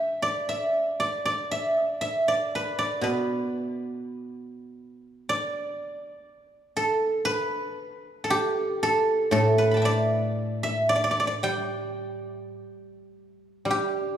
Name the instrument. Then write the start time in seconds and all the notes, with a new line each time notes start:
guzheng
Already playing: E5 G5 A5
0.22 D5
0.49 E5
1.00 D5
1.25 D5
1.51 E5
1.82 D5
2.01 E5
2.28 D5
2.55 B4
2.79 D5
3.01 B2 B4
5.29 D5
6.77 A4
7.25 B4
8.24 A4
8.30 G4
8.83 A4
9.31 A2 A4
9.58 B4
9.71 A5 B5
9.77 G5
9.82 D5 E5
10.63 E5
10.89 D5
10.96 D5
11.04 D5
11.11 D5
11.20 D5
11.27 D5
11.43 G3 G5
13.65 G3
13.71 G4